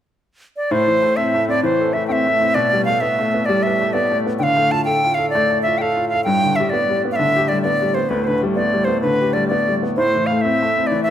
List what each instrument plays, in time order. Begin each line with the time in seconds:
0.56 flute D5
0.71 upright piano A2, accordion A2 A3, flute C5
0.88 upright piano E3
1.03 upright piano A3
1.16 upright piano C4, flute E5
1.35 upright piano A3
1.48 upright piano C4, flute D5
1.63 upright piano E3, flute C5
1.80 upright piano A4
1.93 upright piano A3, flute E5
2.07 upright piano C4, flute G5
2.12 flute E5
2.27 upright piano A3
2.41 upright piano C4
2.55 upright piano B2, flute D5
2.73 upright piano G3
2.85 upright piano A3, flute F5
3.01 upright piano B3, flute E5
3.19 upright piano A3
3.34 upright piano B3
3.46 upright piano G3, flute D5
3.63 flute E5
3.67 upright piano B4
3.81 upright piano A3
3.93 upright piano B3, flute D5
4.11 upright piano A3
4.26 upright piano B3
4.39 upright piano D3, flute G5
4.43 flute F5
4.57 upright piano A3
4.71 upright piano F4, flute A5
4.84 upright piano A4, flute G5
5.04 upright piano F4
5.14 upright piano A4, flute F5
5.30 flute D5
5.35 upright piano A3
5.50 upright piano A4
5.63 upright piano F4, flute E5
5.78 upright piano A4, flute F5 G5
5.97 upright piano F4
6.09 flute F5
6.13 upright piano A4
6.24 upright piano G2, flute G5
6.44 upright piano D3
6.56 flute E5
6.60 upright piano G3
6.70 upright piano B3, flute D5
6.90 upright piano G3
7.05 upright piano B3
7.11 flute F5
7.16 upright piano D3, flute E5
7.36 upright piano G4
7.48 upright piano G3, flute D5
7.62 upright piano B3, flute D5
7.82 upright piano G3
7.94 upright piano B3, flute C5
8.09 upright piano D2, accordion A2 A3, flute B4
8.24 upright piano D3, flute B4 C5
8.38 flute B4
8.43 upright piano G3
8.55 upright piano B3, flute D5
8.73 upright piano G3
8.84 upright piano B3, flute C5
9.01 upright piano D3, flute B4
9.21 upright piano G4
9.33 upright piano G3, flute D5
9.48 upright piano B3, flute D5
9.68 upright piano G3
9.83 upright piano B3
9.96 upright piano A2, flute C5
10.16 upright piano E3
10.26 flute F5
10.31 upright piano A3
10.41 upright piano C4, flute E5
10.62 upright piano A3
10.78 upright piano C4
10.87 flute D5
10.91 upright piano E3
11.03 flute E5